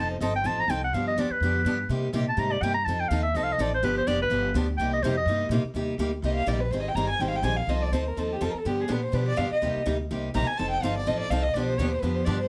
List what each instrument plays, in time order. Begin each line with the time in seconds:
Already playing: upright bass F1, steel-string acoustic guitar F3 C4
0.00 steel-string acoustic guitar D#4 A4, clarinet A5
0.11 clarinet C5
0.20 upright bass G1, steel-string acoustic guitar F3 C4 D#4 A4, clarinet D#5
0.36 clarinet G5
0.44 upright bass A1, steel-string acoustic guitar F3 C4 D#4 A4, clarinet A5
0.60 clarinet A#5
0.68 upright bass C2, steel-string acoustic guitar F3 C4 D#4 A4, clarinet G5
0.84 clarinet F#5
0.93 upright bass G2, steel-string acoustic guitar D3 F3 B3 D4 G4, clarinet F5
1.07 clarinet D#5
1.16 upright bass D#2, steel-string acoustic guitar D3 F3 B3 D4 G4, clarinet D5
1.30 clarinet B4, muted upright bass stroke
1.40 upright bass F2, steel-string acoustic guitar D3 F3 B3 D4 G4
1.65 upright bass G2, steel-string acoustic guitar D3 F3 B3 D4 G4
1.89 upright bass C3, steel-string acoustic guitar C3 G3 A#3 D#4 G4
2.13 upright bass A#2, steel-string acoustic guitar C3 G3 A#3 D#4 G4
2.29 clarinet A5
2.37 upright bass G#2, steel-string acoustic guitar C3 G3 A#3 D#4 G4, clarinet A#5
2.52 clarinet D5
2.61 upright bass G2, steel-string acoustic guitar C3 G3 A#3 D#4 G4, clarinet G5
2.74 clarinet A#5
2.85 upright bass F2, steel-string acoustic guitar F3 D#4, clarinet A5
2.89 steel-string acoustic guitar C4 A4
3.00 clarinet G5
3.09 upright bass D#2, steel-string acoustic guitar F3 C4 D#4 A4, clarinet F5
3.23 clarinet E5
3.35 upright bass C2, steel-string acoustic guitar F3 C4 D#4 A4, clarinet D#5
3.44 clarinet F5
3.52 clarinet D#5
3.58 upright bass A1, steel-string acoustic guitar F3 C4 D#4 A4, clarinet D5
3.74 clarinet C5
3.83 upright bass G1, steel-string acoustic guitar D3 F3 B3 D4 G4, clarinet B4
3.98 clarinet C5
4.07 upright bass F1, steel-string acoustic guitar D3 F3 B3 D4 G4, clarinet D5
4.22 clarinet B4
4.30 upright bass G1, steel-string acoustic guitar D3 F3 B3 D4 G4
4.54 upright bass D2, steel-string acoustic guitar D3 F3 B3 D4 G4
4.78 upright bass C2, steel-string acoustic guitar C3 G3 A#3 D#4 G4, clarinet G5
4.93 clarinet D#5
5.03 upright bass F2, steel-string acoustic guitar C3 G3 A#3 D#4 G4, clarinet C5
5.17 clarinet D#5
5.26 upright bass G2, steel-string acoustic guitar C3 G3 A#3 D#4 G4
5.49 upright bass A#2, steel-string acoustic guitar C3 G3 A#3 D#4 G4
5.64 muted upright bass stroke
5.74 upright bass D#2, steel-string acoustic guitar C3 G3 A#3 D#4 G4
5.98 upright bass D2, steel-string acoustic guitar C3 G3 A#3 D#4 G4
6.22 upright bass C2, steel-string acoustic guitar C3 G3 A#3 D#4 G4, violin D#5
6.35 violin F5
6.46 upright bass A#1, steel-string acoustic guitar C3 G3 A#3 D#4 G4, violin D5
6.60 violin B4
6.70 upright bass G#1, steel-string acoustic guitar D#3 G3 C4 D#4 G#4, violin C5
6.80 violin D#5
6.88 violin G5
6.95 upright bass G1, steel-string acoustic guitar D#3 G3 C4 D#4 G#4, violin A#5
7.09 violin G#5
7.19 upright bass G#1, steel-string acoustic guitar D#3 G3 C4 D#4 G#4, violin G5
7.28 violin F5
7.36 violin G5
7.42 upright bass A#1, steel-string acoustic guitar D#3 G3 C4 D#4 G#4, violin G#5
7.56 violin F5
7.67 upright bass C2, steel-string acoustic guitar F3 C4 D#4 A4, violin D#5
7.82 violin D5
7.92 upright bass D2, steel-string acoustic guitar F3 C4 D#4 A4, violin C5
8.07 violin A#4
8.17 upright bass D#2, steel-string acoustic guitar F3 C4 D#4 A4, violin A4
8.32 violin G4
8.41 upright bass F2, steel-string acoustic guitar F3 C4 D#4 A4, violin A4
8.50 violin A#4, muted upright bass stroke
8.58 violin A4
8.65 upright bass G2, steel-string acoustic guitar D3 F3 B3 D4 G4, violin G4
8.81 violin G#4
8.88 upright bass A#2, steel-string acoustic guitar D3 F3 B3 D4 G4
8.92 violin B4
9.03 violin C5
9.12 upright bass B2, steel-string acoustic guitar D3 F3 B3 D4 G4, violin B4
9.28 violin D5
9.36 upright bass G2, steel-string acoustic guitar D3 F3 B3 D4 G4, violin F5
9.51 violin D#5, muted upright bass stroke
9.62 upright bass D#2, steel-string acoustic guitar C3 G3 A#3 D#4 G4
9.76 muted upright bass stroke
9.86 upright bass D2, steel-string acoustic guitar C3 G3 A#3 D#4 G4
10.11 upright bass C2, steel-string acoustic guitar C3 G3 A#3 D#4 G4
10.34 upright bass A#1, steel-string acoustic guitar C3 G3 A#3 D#4 G4, violin A#5
10.47 violin G#5
10.57 upright bass F1, steel-string acoustic guitar F3 C4 D#4 A4, violin A5
10.70 violin G5
10.82 upright bass G1, steel-string acoustic guitar F3 C4 D#4 A4, violin F5
10.97 violin D5
11.06 upright bass A1, steel-string acoustic guitar F3 C4 D#4 A4, violin D#5
11.19 violin D5
11.30 upright bass C2, steel-string acoustic guitar F3 C4 D#4 A4, violin F5
11.43 violin D#5
11.54 upright bass B1, steel-string acoustic guitar D3 F3 B3 D4 G4, violin D5
11.65 violin C5
11.77 upright bass D#2, steel-string acoustic guitar D3 F3 B3 D4 G4, violin C#5
11.90 violin C5
12.00 upright bass F2, steel-string acoustic guitar D3 F3 B3 D4 G4, violin B4
12.15 violin C5
12.25 upright bass G2, steel-string acoustic guitar D3 F3 B3 D4 G4, violin D5
12.40 violin C5